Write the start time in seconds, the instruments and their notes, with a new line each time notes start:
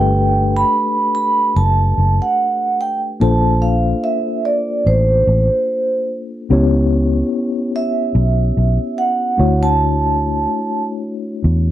Already playing: fingered electric bass G1, tine electric piano A3 D4 G4 A4 B4, vibraphone G5
0.57 vibraphone B5
1.15 vibraphone B5
1.56 fingered electric bass F#1, vibraphone A5
1.98 fingered electric bass F#1
2.22 vibraphone F#5
2.81 vibraphone G5
3.20 fingered electric bass A#1, tine electric piano A#3 D4 F4 A4 C5, vibraphone A5
3.62 vibraphone F5
4.04 vibraphone E5
4.45 vibraphone D5
4.86 fingered electric bass A1, vibraphone C5
5.27 fingered electric bass A1
6.50 fingered electric bass C#2, tine electric piano B3 C#4 E4 G4 C#5
7.76 vibraphone E5
8.15 fingered electric bass B1
8.57 fingered electric bass B1
8.98 vibraphone F#5
9.37 fingered electric bass D2, tine electric piano A3 D4 E4 F#4 C#5
9.63 vibraphone A5
11.44 fingered electric bass E2